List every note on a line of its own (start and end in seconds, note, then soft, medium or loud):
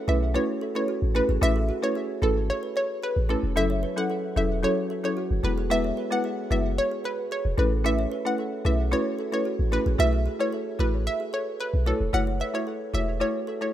0.08 0.37 B1 medium
0.08 0.32 A3 medium
0.08 0.33 C#4 medium
0.08 0.33 E4 medium
0.08 0.18 G#4 medium
0.08 0.33 B4 medium
0.08 0.20 E5 medium
0.34 0.72 A3 medium
0.34 0.72 C#4 medium
0.34 0.72 E4 medium
0.34 0.45 F#4 medium
0.34 0.72 B4 loud
0.34 0.47 C#5 medium
0.61 0.71 A4 medium
0.75 0.95 A3 medium
0.75 0.95 C#4 medium
0.75 0.95 E4 medium
0.75 0.85 A4 medium
0.75 0.95 B4 medium
0.75 0.87 C#5 medium
0.88 0.98 F#4 medium
1.02 1.21 A1 loud
1.15 1.35 A3 medium
1.15 1.35 C#4 medium
1.15 1.35 E4 medium
1.15 1.25 G#4 medium
1.15 1.35 B4 medium
1.15 1.27 B4 medium
1.29 1.38 G#1 medium
1.29 1.38 G#4 medium
1.41 1.71 A1 loud
1.41 1.79 A3 loud
1.41 1.79 C#4 medium
1.41 1.79 E4 medium
1.41 1.79 B4 loud
1.41 1.65 E5 loud
1.56 1.65 A4 medium
1.69 1.79 F#4 medium
1.82 2.02 A3 medium
1.82 2.02 C#4 medium
1.82 2.02 E4 medium
1.82 2.02 B4 medium
1.82 1.94 C#5 medium
1.95 2.05 G#4 medium
2.22 2.51 G#1 loud
2.22 2.42 A3 medium
2.22 2.42 C#4 medium
2.22 2.43 E4 medium
2.22 2.32 A4 medium
2.22 2.35 A4 medium
2.22 2.43 B4 medium
2.50 2.61 C#5 medium
2.63 2.72 B4 medium
2.76 2.86 C#5 medium
2.76 2.88 C#5 medium
3.03 3.13 G#4 medium
3.03 3.15 B4 medium
3.16 3.36 A1 loud
3.29 3.50 A3 medium
3.29 3.50 C#4 medium
3.29 3.50 E4 medium
3.29 3.39 A4 medium
3.29 3.42 A4 medium
3.29 3.50 B4 medium
3.43 3.58 E1 medium
3.56 3.85 F#1 loud
3.56 3.93 F#3 medium
3.56 3.93 C#4 medium
3.56 3.94 E4 medium
3.56 3.94 A4 loud
3.56 3.79 E5 loud
3.70 3.79 C#5 medium
3.83 3.93 B4 medium
3.96 4.33 F#3 medium
3.96 4.33 C#4 medium
3.96 4.33 E4 medium
3.96 4.34 A4 medium
3.96 4.08 F#5 medium
4.10 4.20 A4 medium
4.36 4.66 E1 loud
4.36 4.61 F#3 medium
4.36 4.61 C#4 medium
4.36 4.61 E4 medium
4.36 4.47 G#4 medium
4.36 4.61 A4 medium
4.36 4.49 E5 medium
4.63 5.00 F#3 medium
4.63 5.01 C#4 medium
4.63 5.01 E4 medium
4.63 4.73 F#4 medium
4.63 5.01 A4 loud
4.63 4.76 C#5 medium
4.90 5.00 A4 medium
5.04 5.24 F#3 medium
5.04 5.24 C#4 medium
5.04 5.24 E4 medium
5.04 5.13 A4 medium
5.04 5.24 A4 medium
5.04 5.15 C#5 medium
5.17 5.27 F#4 medium
5.31 5.40 F#1 loud
5.43 5.92 E1 loud
5.43 5.64 G#3 medium
5.43 5.64 B3 medium
5.43 5.64 E4 medium
5.43 5.54 G#4 medium
5.43 5.64 B4 medium
5.43 5.56 B4 medium
5.58 5.67 G#4 medium
5.70 6.08 G#3 loud
5.70 6.08 B3 medium
5.70 6.08 E4 medium
5.70 6.08 B4 loud
5.70 5.94 E5 loud
5.84 5.94 C#5 medium
5.97 6.07 B4 medium
6.11 6.31 G#3 medium
6.11 6.31 B3 medium
6.11 6.31 E4 medium
6.11 6.31 B4 medium
6.11 6.23 F#5 medium
6.24 6.34 G#4 medium
6.50 6.80 F#1 loud
6.50 6.71 G#3 medium
6.50 6.71 B3 medium
6.50 6.71 E4 medium
6.50 6.61 F#4 medium
6.50 6.71 B4 medium
6.50 6.63 E5 medium
6.78 6.90 C#5 medium
6.92 7.01 G#4 medium
7.04 7.14 B4 medium
7.04 7.17 B4 medium
7.31 7.41 G#4 medium
7.31 7.43 C#5 medium
7.45 7.54 E1 loud
7.58 8.06 A1 loud
7.58 7.78 A3 medium
7.58 7.78 C#4 medium
7.58 7.78 E4 medium
7.58 7.68 A4 medium
7.58 7.78 B4 medium
7.58 7.70 B4 medium
7.84 8.22 A3 medium
7.84 8.22 C#4 medium
7.84 8.22 E4 medium
7.84 8.22 B4 loud
7.84 8.08 E5 loud
7.99 8.08 C#5 medium
8.12 8.22 B4 medium
8.25 8.62 A3 medium
8.25 8.62 C#4 medium
8.25 8.62 E4 medium
8.25 8.62 B4 medium
8.25 8.37 F#5 medium
8.38 8.48 A4 medium
8.65 8.94 B1 loud
8.65 8.90 A3 medium
8.65 8.90 C#4 medium
8.65 8.90 E4 medium
8.65 8.75 G#4 medium
8.65 8.90 B4 medium
8.65 8.77 E5 medium
8.91 9.29 A3 medium
8.91 9.29 C#4 medium
8.91 9.29 E4 medium
8.91 9.02 F#4 medium
8.91 9.29 B4 loud
8.91 9.04 C#5 medium
9.19 9.29 A4 medium
9.32 9.52 A3 medium
9.32 9.52 C#4 medium
9.32 9.52 E4 medium
9.32 9.42 A4 medium
9.32 9.52 B4 medium
9.32 9.44 C#5 medium
9.45 9.55 F#4 medium
9.59 9.78 A1 medium
9.72 9.92 A3 medium
9.72 9.92 C#4 medium
9.72 9.93 E4 medium
9.72 9.82 G#4 medium
9.72 9.93 B4 medium
9.72 9.85 B4 medium
9.86 9.95 A1 medium
9.86 9.95 G#4 medium
9.98 10.28 B1 loud
9.98 10.36 A3 medium
9.98 10.36 E4 medium
9.98 10.36 F#4 medium
9.98 10.36 B4 loud
9.98 10.22 E5 loud
10.13 10.22 F#4 medium
10.26 10.36 G#4 medium
10.39 10.59 A3 medium
10.39 10.59 E4 medium
10.39 10.60 F#4 medium
10.39 10.60 B4 medium
10.39 10.51 C#5 medium
10.53 10.63 A4 medium
10.79 11.08 A1 medium
10.79 10.99 A3 medium
10.79 11.00 E4 medium
10.79 11.00 F#4 medium
10.79 10.89 B4 medium
10.79 11.00 B4 medium
10.79 10.92 B4 medium
11.07 11.18 E5 medium
11.20 11.29 G#4 medium
11.33 11.43 A4 medium
11.33 11.45 C#5 medium
11.60 11.70 B4 medium
11.60 11.72 B4 medium
11.74 11.93 B1 loud
11.86 12.07 A3 medium
11.86 12.07 E4 medium
11.86 12.07 F#4 medium
11.86 11.99 A4 medium
11.86 12.07 B4 medium
11.86 11.97 C#5 medium
12.00 12.10 E1 medium
12.13 12.42 F#1 loud
12.13 12.50 A3 medium
12.13 12.51 E4 medium
12.13 12.51 F#4 medium
12.13 12.51 C#5 loud
12.13 12.25 F#5 loud
12.27 12.40 C#5 medium
12.40 12.50 B4 medium
12.40 12.52 E5 medium
12.54 12.90 A3 medium
12.54 12.91 E4 medium
12.54 12.91 F#4 medium
12.54 12.91 C#5 medium
12.54 12.77 C#5 medium
12.67 12.77 A4 medium
12.93 13.23 E1 loud
12.93 13.18 A3 medium
12.93 13.18 E4 medium
12.93 13.18 F#4 medium
12.93 13.04 G#4 medium
12.93 13.19 C#5 medium
12.93 13.17 E5 medium
13.20 13.58 A3 medium
13.20 13.58 E4 medium
13.20 13.30 F#4 medium
13.20 13.58 F#4 medium
13.20 13.58 C#5 loud
13.20 13.33 C#5 medium
13.47 13.57 A4 medium
13.61 13.73 A3 medium
13.61 13.73 E4 medium
13.61 13.73 F#4 medium
13.61 13.70 A4 medium
13.61 13.73 C#5 medium
13.61 13.72 C#5 medium